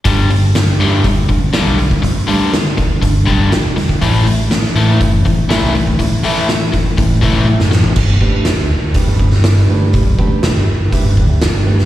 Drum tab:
CC |----------------|----------------|----------------|----------------|
HH |o-o-o-o-o-o-o-o-|o-o-o-o-o-o-o-o-|o-o-o-o-o-o-o-o-|o-o-o-o-o-o-----|
SD |----o-------o---|----o-------o-o-|----oo------o---|----o--------oo-|
T1 |----------------|----------------|----------------|------------o---|
FT |----------------|----------------|----------------|---------------o|
BD |o-------o-o----o|o-----o-o-o----o|o-------o-o----o|o-----o-o-o-----|

CC |x---------------|----------------|
HH |----o---o---o---|o---o---o---o---|
SD |----o------oo---|----o-------o--o|
T1 |----------------|----------------|
FT |----------------|----------------|
BD |o-o-----o-o-----|o-o-----o-o-----|